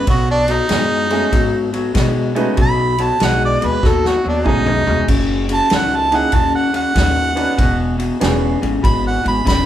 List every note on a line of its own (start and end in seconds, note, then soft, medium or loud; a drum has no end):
0.07 0.58 B1 medium
0.07 0.45 B2 medium
0.07 0.45 F#3 medium
0.07 0.29 F#4 loud
0.07 kick loud
0.07 ride medium
0.31 0.54 D4 loud
0.48 0.68 B2 medium
0.48 0.68 F#3 medium
0.48 ride medium
0.52 1.72 D#4 loud
0.69 1.20 F#2 medium
0.69 1.07 B2 medium
0.69 1.07 G#3 medium
0.69 snare loud
0.69 ride medium
1.10 1.30 B2 medium
1.10 1.30 G#3 medium
1.10 1.30 A3 medium
1.10 1.31 C#4 medium
1.10 1.31 D#4 medium
1.10 1.31 F#4 medium
1.10 1.31 G#4 medium
1.10 ride medium
1.32 1.83 G#2 medium
1.32 1.69 B2 medium
1.32 1.70 F#3 medium
1.32 kick loud
1.32 ride medium
1.73 1.93 B2 medium
1.73 1.93 F#3 medium
1.73 ride medium
1.94 2.32 B2 medium
1.94 2.45 B2 medium
1.94 2.32 G#3 medium
1.94 kick medium
1.94 snare loud
1.94 ride medium
2.35 2.55 B2 medium
2.35 2.55 G#3 loud
2.35 2.55 A3 medium
2.35 2.55 C#4 medium
2.35 2.56 D#4 medium
2.35 2.56 F#4 medium
2.35 2.56 B4 medium
2.35 ride medium
2.57 3.08 B1 loud
2.57 2.95 B2 medium
2.57 2.95 F#3 medium
2.57 kick loud
2.57 ride medium
2.62 3.05 B5 loud
2.98 3.18 B2 medium
2.98 3.18 F#3 medium
2.98 ride medium
3.03 3.22 A5 medium
3.20 3.54 B1 loud
3.20 3.58 B2 medium
3.20 3.58 G#3 medium
3.20 snare loud
3.20 ride medium
3.25 3.43 F#5 medium
3.45 3.67 D5 medium
3.61 3.80 D#2 medium
3.61 3.81 B2 medium
3.61 3.81 G#3 medium
3.61 ride medium
3.66 3.89 B4 medium
3.83 4.16 D#2 medium
3.83 4.20 B2 medium
3.83 4.20 F#3 loud
3.83 kick loud
3.83 snare medium
3.87 4.09 A4 medium
4.05 4.26 F#4 medium
4.05 snare medium
4.24 4.42 D#2 medium
4.24 4.43 B2 medium
4.24 4.44 F#3 medium
4.28 4.49 D4 medium
4.44 4.79 B1 medium
4.44 4.83 B2 medium
4.44 4.83 G#3 medium
4.44 5.08 A3 medium
4.44 5.08 C#4 medium
4.44 5.08 D#4 medium
4.44 5.07 D#4 loud
4.44 5.08 F#4 medium
4.44 5.08 G#4 medium
4.44 kick medium
4.44 mid tom medium
4.66 mid tom medium
4.87 5.05 F1 medium
4.87 5.06 B2 medium
4.87 5.06 G#3 medium
4.87 floor tom loud
5.08 5.58 F#1 medium
5.08 5.45 F#2 medium
5.08 5.46 C#3 medium
5.08 kick loud
5.08 ride medium
5.08 crash medium
5.49 5.68 F#2 medium
5.49 5.69 C#3 medium
5.49 ride medium
5.54 5.72 A5 loud
5.70 6.21 C#2 medium
5.70 6.08 F#2 medium
5.70 6.08 D#3 medium
5.70 snare loud
5.70 ride medium
5.75 5.97 F#5 medium
5.96 6.17 A5 loud
6.11 6.31 F#2 medium
6.11 6.31 D#3 medium
6.11 6.31 A#3 medium
6.11 6.31 C#4 medium
6.11 6.31 D#4 medium
6.11 6.32 E4 medium
6.11 6.32 G#4 medium
6.11 ride medium
6.16 6.36 F#5 medium
6.32 6.83 D#2 medium
6.32 6.70 F#2 medium
6.32 6.70 C#3 medium
6.32 6.54 A5 loud
6.32 kick loud
6.32 ride medium
6.55 6.75 F#5 medium
6.74 6.93 F#2 medium
6.74 6.93 C#3 medium
6.74 7.97 F#5 loud
6.74 ride medium
6.94 7.46 D#2 medium
6.94 7.32 F#2 medium
6.94 7.33 D#3 medium
6.94 kick medium
6.94 snare loud
6.94 ride medium
7.35 7.56 F#2 medium
7.35 7.56 D#3 loud
7.35 7.55 B3 medium
7.35 7.56 C#4 medium
7.35 7.56 D4 medium
7.35 7.56 F#4 medium
7.35 7.56 B4 medium
7.35 ride medium
7.57 8.08 E1 loud
7.57 7.95 E2 medium
7.57 7.95 B2 loud
7.57 kick loud
7.57 ride medium
7.98 8.18 E2 medium
7.98 8.18 B2 medium
7.98 ride medium
8.20 8.54 E1 medium
8.20 8.57 E2 medium
8.20 8.58 C#3 medium
8.20 8.58 B3 medium
8.20 8.58 C#4 medium
8.20 8.58 D4 medium
8.20 8.58 F#4 medium
8.20 8.59 G#4 medium
8.20 snare loud
8.20 ride medium
8.61 8.79 G#1 medium
8.61 8.81 E2 medium
8.61 8.81 C#3 medium
8.61 ride medium
8.82 9.17 G#1 medium
8.82 9.20 E2 medium
8.82 9.20 B2 medium
8.82 9.04 B5 medium
8.82 kick loud
8.82 ride medium
9.07 9.26 F#5 medium
9.24 9.42 G#1 loud
9.24 9.43 E2 medium
9.24 9.43 B2 medium
9.24 9.46 B5 medium
9.24 ride medium
9.45 9.66 E1 medium
9.45 9.66 E2 medium
9.45 9.66 C#3 medium
9.45 9.66 B5 loud
9.45 kick medium
9.45 snare medium
9.45 ride medium